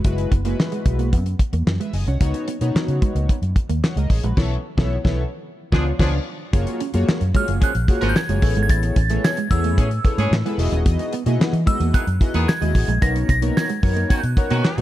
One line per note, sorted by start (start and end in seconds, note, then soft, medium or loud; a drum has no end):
0.04 0.25 F#1 loud
0.04 0.32 G#3 medium
0.04 0.32 E4 medium
0.04 0.32 F#4 medium
0.04 0.32 B4 loud
0.04 kick loud
0.04 closed hi-hat medium
0.18 muted clean electric guitar stroke soft
0.18 closed hi-hat medium
0.31 0.52 F#1 loud
0.31 0.41 B3 medium
0.31 kick medium
0.31 closed hi-hat medium
0.45 1.08 G#3 medium
0.45 0.54 A#3 medium
0.45 1.09 E4 medium
0.45 1.09 F#4 medium
0.45 1.09 B4 medium
0.45 closed hi-hat medium
0.60 snare loud
0.60 clap medium
0.72 0.81 G#3 medium
0.72 closed hi-hat soft
0.86 1.14 B1 medium
0.86 muted clean electric guitar stroke soft
0.86 kick loud
0.86 closed hi-hat medium
0.99 1.08 A#3 medium
0.99 closed hi-hat soft
1.12 1.33 F#2 loud
1.12 1.22 B3 medium
1.12 kick loud
1.12 closed hi-hat medium
1.26 muted clean electric guitar stroke soft
1.26 closed hi-hat soft
1.39 kick loud
1.39 closed hi-hat medium
1.53 1.63 E2 medium
1.53 1.62 A#3 medium
1.53 closed hi-hat medium
1.67 1.77 F#2 medium
1.67 snare loud
1.67 clap medium
1.80 1.89 G#3 medium
1.80 1.93 B4 medium
1.80 1.93 E5 medium
1.80 closed hi-hat medium
1.93 2.04 F#1 medium
1.93 2.07 D#5 medium
1.93 2.07 G#5 medium
1.93 muted clean electric guitar stroke soft
1.93 open hi-hat medium
2.07 2.17 C2 medium
2.07 2.17 C#4 medium
2.07 2.20 C#5 medium
2.07 2.33 F#5 medium
2.07 closed hi-hat soft
2.20 2.31 C#2 loud
2.20 2.48 B3 medium
2.20 2.48 D#4 medium
2.20 2.48 F#4 medium
2.20 2.48 C#5 loud
2.20 kick loud
2.20 closed hi-hat medium
2.34 muted clean electric guitar stroke soft
2.34 closed hi-hat medium
2.48 2.57 B3 medium
2.48 closed hi-hat medium
2.61 2.71 B2 medium
2.61 2.70 A#3 medium
2.61 3.34 B3 medium
2.61 3.34 D#4 medium
2.61 3.34 F#4 medium
2.61 3.34 C#5 medium
2.61 closed hi-hat medium
2.75 muted fingered electric bass stroke soft
2.75 muted clean electric guitar stroke soft
2.75 snare loud
2.75 clap medium
2.88 2.98 C#3 medium
2.88 closed hi-hat soft
3.02 3.11 G#3 medium
3.02 kick loud
3.02 closed hi-hat medium
3.15 3.25 C#2 medium
3.15 3.25 A#3 medium
3.15 closed hi-hat medium
3.29 3.38 B3 medium
3.29 kick loud
3.29 closed hi-hat medium
3.42 3.52 F#2 medium
3.42 muted clean electric guitar stroke soft
3.42 closed hi-hat soft
3.56 kick loud
3.56 closed hi-hat medium
3.69 3.80 D#2 medium
3.69 3.78 A#3 medium
3.69 closed hi-hat medium
3.83 3.96 C#5 medium
3.83 3.96 F#5 medium
3.83 snare loud
3.83 clap medium
3.96 4.06 C#2 medium
3.96 4.06 G#3 medium
3.96 4.10 A#4 medium
3.96 4.10 D#5 medium
3.96 closed hi-hat soft
4.10 4.20 A1 medium
4.10 4.24 G#4 medium
4.10 4.23 C#5 medium
4.10 muted clean electric guitar stroke soft
4.10 kick loud
4.10 open hi-hat medium
4.23 4.34 A#1 medium
4.23 4.33 G#3 medium
4.23 4.37 F#4 medium
4.23 4.37 B4 medium
4.23 closed hi-hat soft
4.37 4.55 B1 loud
4.37 4.55 B3 loud
4.37 4.56 E4 loud
4.37 4.56 A4 loud
4.37 4.56 C#5 loud
4.37 kick loud
4.37 snare loud
4.37 crash medium
4.77 4.96 B1 loud
4.77 4.96 B3 loud
4.77 4.96 E4 loud
4.77 4.96 A4 loud
4.77 4.96 C#5 loud
4.77 kick loud
4.77 snare loud
5.04 5.23 B1 medium
5.04 5.23 B3 loud
5.04 5.23 E4 loud
5.04 5.23 A4 loud
5.04 5.23 C#5 loud
5.04 kick loud
5.04 snare loud
5.72 5.91 C#2 loud
5.72 5.86 F3 medium
5.72 5.90 B3 loud
5.72 5.91 D4 loud
5.72 5.86 D4 loud
5.72 5.91 F4 loud
5.72 5.86 G#4 loud
5.72 5.91 C#5 loud
5.72 kick loud
5.72 snare loud
5.99 6.18 C#2 loud
5.99 6.13 F3 loud
5.99 6.18 B3 loud
5.99 6.18 D4 loud
5.99 6.13 D4 medium
5.99 6.18 F4 loud
5.99 6.13 G#4 medium
5.99 6.18 C#5 loud
5.99 kick loud
5.99 snare loud
5.99 crash medium
6.53 6.63 F#1 loud
6.53 6.80 A#3 loud
6.53 6.80 F4 medium
6.53 6.80 F#4 medium
6.53 6.81 G#4 medium
6.53 6.81 C#5 loud
6.53 kick loud
6.53 closed hi-hat medium
6.67 muted clean electric guitar stroke soft
6.67 closed hi-hat medium
6.80 6.90 C#4 medium
6.80 closed hi-hat medium
6.94 7.04 F#2 medium
6.94 7.21 A#3 medium
6.94 7.03 A#3 medium
6.94 7.21 F4 medium
6.94 7.21 F#4 medium
6.94 7.21 G#4 medium
6.94 7.21 C#5 loud
6.94 closed hi-hat medium
7.08 muted clean electric guitar stroke soft
7.08 muted fingered electric bass stroke soft
7.08 snare loud
7.08 clap loud
7.21 7.31 F#2 medium
7.21 closed hi-hat soft
7.34 7.44 G#3 medium
7.34 7.71 A#3 medium
7.34 7.71 F4 medium
7.34 7.71 F#4 medium
7.34 7.71 G#4 medium
7.34 7.71 C#5 medium
7.34 7.63 F6 medium
7.34 kick loud
7.34 closed hi-hat medium
7.48 7.58 F#1 medium
7.48 7.57 A#3 medium
7.48 closed hi-hat medium
7.61 7.73 F3 medium
7.61 7.72 C#4 medium
7.61 7.71 C#4 medium
7.61 7.73 G#4 medium
7.61 8.11 F#6 medium
7.61 kick loud
7.61 closed hi-hat medium
7.75 7.85 A#1 medium
7.75 muted clean electric guitar stroke soft
7.75 closed hi-hat soft
7.88 8.16 A#3 medium
7.88 8.16 F4 medium
7.88 8.16 F#4 medium
7.88 8.16 G#4 medium
7.88 8.16 C#5 medium
7.88 kick loud
7.88 closed hi-hat medium
8.01 8.12 G#1 medium
8.01 8.19 F3 loud
8.01 8.11 A#3 medium
8.01 8.19 C#4 medium
8.01 8.19 A#4 loud
8.01 closed hi-hat medium
8.09 8.16 G6 medium
8.16 8.60 G#6 loud
8.16 snare loud
8.16 clap loud
8.29 8.39 F#1 medium
8.29 8.38 G#3 medium
8.29 8.42 A#3 medium
8.29 8.42 F4 medium
8.29 8.43 F#4 medium
8.29 8.41 G#4 medium
8.29 8.42 C#5 medium
8.29 closed hi-hat medium
8.42 8.52 A1 loud
8.42 8.96 B3 medium
8.42 8.97 E4 medium
8.42 8.97 G#4 medium
8.42 8.97 A4 medium
8.42 8.97 C#5 medium
8.42 muted clean electric guitar stroke soft
8.42 kick loud
8.42 open hi-hat medium
8.56 8.67 G#1 medium
8.56 8.65 G#3 medium
8.56 closed hi-hat soft
8.63 8.70 G#6 medium
8.69 8.90 A1 loud
8.69 9.26 A6 loud
8.69 kick loud
8.69 closed hi-hat loud
8.83 muted clean electric guitar stroke soft
8.83 closed hi-hat medium
8.96 9.17 A1 loud
8.96 9.06 C#4 medium
8.96 kick loud
8.96 closed hi-hat medium
9.10 9.19 A3 medium
9.10 9.37 B3 medium
9.10 9.37 E4 medium
9.10 9.37 G#4 medium
9.10 9.37 A4 medium
9.10 9.38 C#5 medium
9.10 closed hi-hat medium
9.24 9.52 G#6 medium
9.24 snare loud
9.24 clap medium
9.37 9.47 G#3 medium
9.37 closed hi-hat soft
9.51 9.78 E2 medium
9.51 9.87 B3 medium
9.51 9.87 E4 medium
9.51 9.87 G#4 medium
9.51 9.87 A4 medium
9.51 9.87 C#5 medium
9.51 10.55 E6 medium
9.51 muted clean electric guitar stroke soft
9.51 kick medium
9.51 closed hi-hat medium
9.64 9.73 A3 medium
9.64 closed hi-hat medium
9.77 9.98 A2 loud
9.77 9.89 E3 medium
9.77 9.89 C#4 medium
9.77 9.87 C#4 medium
9.77 9.89 G#4 medium
9.77 kick loud
9.77 closed hi-hat medium
9.91 muted clean electric guitar stroke soft
9.91 closed hi-hat soft
10.04 10.32 B3 medium
10.04 10.32 E4 medium
10.04 10.32 G#4 medium
10.04 10.32 A4 medium
10.04 10.32 C#5 medium
10.04 kick loud
10.04 closed hi-hat medium
10.18 10.28 G#2 medium
10.18 10.36 E3 loud
10.18 10.27 A3 medium
10.18 10.36 C#4 medium
10.18 10.36 G#4 loud
10.18 closed hi-hat medium
10.31 10.42 A2 loud
10.31 snare loud
10.31 clap loud
10.45 10.55 G#3 medium
10.45 10.57 B3 medium
10.45 10.57 E4 medium
10.45 10.58 G#4 medium
10.45 10.59 A4 medium
10.45 10.59 B4 loud
10.45 closed hi-hat medium
10.58 10.68 E1 loud
10.58 11.13 B3 loud
10.58 11.13 E4 medium
10.58 11.13 F#4 medium
10.58 11.13 G#4 medium
10.58 11.13 D#5 loud
10.58 muted clean electric guitar stroke soft
10.58 open hi-hat loud
10.72 10.82 D#1 medium
10.72 10.82 C#4 medium
10.72 closed hi-hat soft
10.86 10.96 E2 loud
10.86 kick loud
10.86 closed hi-hat loud
10.99 muted clean electric guitar stroke medium
10.99 closed hi-hat medium
11.13 11.22 B3 medium
11.13 closed hi-hat medium
11.26 11.36 B2 medium
11.26 11.36 A#3 medium
11.26 11.53 B3 medium
11.26 11.53 E4 medium
11.26 11.53 F#4 medium
11.26 11.54 G#4 medium
11.26 11.54 D#5 loud
11.26 closed hi-hat medium
11.40 muted fingered electric bass stroke soft
11.40 muted clean electric guitar stroke soft
11.40 snare loud
11.40 clap medium
11.53 11.63 E3 medium
11.53 closed hi-hat soft
11.66 11.76 G#3 medium
11.66 12.03 B3 medium
11.66 12.03 E4 medium
11.66 12.03 F#4 medium
11.66 12.03 G#4 medium
11.66 12.03 D#5 medium
11.66 11.95 E6 medium
11.66 kick loud
11.66 closed hi-hat medium
11.80 11.90 E2 medium
11.80 11.89 A#3 medium
11.80 closed hi-hat soft
11.94 12.05 D#3 medium
11.94 12.05 B3 medium
11.94 12.03 B3 medium
11.94 12.05 G#4 medium
11.94 12.50 F#6 loud
11.94 kick loud
11.94 closed hi-hat medium
12.07 12.17 F#2 medium
12.07 muted clean electric guitar stroke soft
12.07 closed hi-hat soft
12.20 12.48 B3 medium
12.20 12.48 E4 medium
12.20 12.48 F#4 medium
12.20 12.48 G#4 medium
12.20 12.48 D#5 medium
12.20 kick loud
12.20 closed hi-hat medium
12.34 12.45 E2 medium
12.34 12.52 D#3 loud
12.34 12.44 A#3 medium
12.34 12.52 B3 medium
12.34 12.52 G#4 loud
12.34 closed hi-hat medium
12.48 13.04 G#6 loud
12.48 snare loud
12.48 clap loud
12.61 12.72 D#2 medium
12.61 12.71 G#3 medium
12.61 12.88 B3 medium
12.61 12.88 E4 medium
12.61 12.88 F#4 medium
12.61 12.89 G#4 medium
12.61 12.89 D#5 medium
12.61 closed hi-hat medium
12.75 12.85 A1 medium
12.75 muted clean electric guitar stroke soft
12.75 kick loud
12.75 open hi-hat medium
12.88 12.98 A#1 medium
12.88 12.98 G#3 medium
12.88 closed hi-hat soft
13.01 13.22 B1 loud
13.01 13.29 B3 medium
13.01 13.29 D#4 medium
13.01 13.29 F#4 medium
13.01 13.29 A#4 medium
13.01 13.29 C#5 medium
13.01 13.29 A#6 loud
13.01 kick loud
13.01 closed hi-hat loud
13.16 muted clean electric guitar stroke soft
13.16 closed hi-hat medium
13.29 13.49 B1 medium
13.29 13.38 B3 medium
13.29 13.57 A#6 loud
13.29 kick loud
13.29 closed hi-hat medium
13.42 13.52 A#3 medium
13.42 13.69 B3 medium
13.42 13.69 D#4 medium
13.42 13.69 F#4 medium
13.42 13.70 A#4 medium
13.42 13.70 C#5 medium
13.42 closed hi-hat medium
13.57 14.12 G#6 medium
13.57 snare loud
13.57 clap medium
13.69 13.79 G#3 medium
13.69 closed hi-hat soft
13.83 14.03 F#2 loud
13.83 14.19 B3 medium
13.83 14.19 D#4 medium
13.83 14.19 F#4 medium
13.83 14.19 A#4 medium
13.83 14.19 C#5 medium
13.83 muted clean electric guitar stroke soft
13.83 kick loud
13.83 open hi-hat medium
13.97 14.06 A#3 medium
13.97 closed hi-hat medium
14.09 14.21 D#3 medium
14.09 14.19 B3 loud
14.09 14.21 C#4 medium
14.09 14.21 F#4 medium
14.09 14.81 F#6 medium
14.09 kick loud
14.09 closed hi-hat medium
14.23 14.34 B2 medium
14.23 muted clean electric guitar stroke soft
14.23 closed hi-hat soft
14.37 14.64 B3 medium
14.37 14.64 D#4 medium
14.37 14.64 F#4 medium
14.37 14.65 A#4 medium
14.37 14.65 C#5 medium
14.37 kick loud
14.37 closed hi-hat medium
14.50 14.61 B2 medium
14.50 14.81 D#3 loud
14.50 14.60 A#3 medium
14.50 14.81 C#4 medium
14.50 14.81 F#4 loud
14.50 closed hi-hat medium
14.65 snare loud
14.65 clap loud
14.77 14.81 B2 loud
14.77 14.81 G#3 medium
14.77 14.81 B3 loud
14.77 14.81 D#4 medium
14.77 14.81 F#4 medium
14.77 14.81 A#4 medium
14.77 14.81 C#5 loud
14.77 closed hi-hat medium